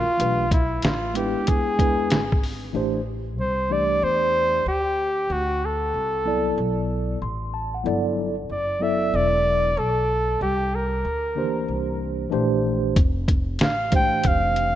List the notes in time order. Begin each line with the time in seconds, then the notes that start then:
Already playing: F4
0.09 muted upright bass stroke
0.18 B1 E3 A3 D4 G4 B4, closed hi-hat
0.51 E4, kick, closed hi-hat
0.82 A1 F4, snare, closed hi-hat
1.14 G#3 B3 D4 E4 G4 B4, closed hi-hat
1.36 muted upright bass stroke
1.47 E2 G#4, kick, closed hi-hat
1.78 G#3 B3 D4 E4 B4, kick, closed hi-hat
2.10 G#1, snare, closed hi-hat
2.32 kick
2.43 open hi-hat
2.73 A1 E3 A3 D4 G4 C5
3.39 C2 C5
3.69 E3 A3 D4 G4 D5
4.02 E2 C5
4.66 D2 G4
5.30 D2 F#4
5.65 A4
5.94 C2
6.25 F#3 B3 E4 A4 D5
6.58 B1
7.22 A1 C6
7.54 A5
7.74 F#5
7.84 G1 F#3 B3 E4 A4 D5
8.49 F#1 D5
8.80 F#3 B3 E4 A4 D5 E5
9.14 E1 D5
9.77 B1 A4
10.41 C2 G4
10.75 A#4
11.05 D2
11.35 D3 A#3 D4 G4 C5
11.42 E3
11.68 C2
12.30 A#1 E3 A3 D4 G4 C5
12.96 F1, kick, closed hi-hat
13.28 kick, closed hi-hat
13.59 A1, snare, closed hi-hat
13.63 F5
13.90 E3 G#3 D4 G4 C5, kick, closed hi-hat
13.95 A3 G5
14.24 F1 F5, kick, closed hi-hat
14.56 closed hi-hat